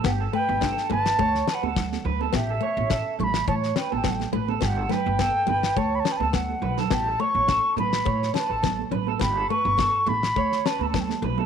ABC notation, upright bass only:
X:1
M:4/4
L:1/16
Q:"Swing 16ths" 1/4=105
K:Amix
V:1 name="Upright bass" clef=bass
G,,,2 z G,,,2 z G,,,2 D,,2 z D,,3 D,,2 | A,,,2 z A,,,2 z A,,,2 A,,2 z A,,,3 A,,,2 | G,,,2 z G,,,2 z G,,,2 D,,2 z D,,3 B,,,2 | A,,,2 z A,,,2 z A,,,2 A,,2 z A,,,3 A,,,2 |
G,,,2 z G,,,2 z A,,,2 D,,2 z D,,3 B,,,2 |]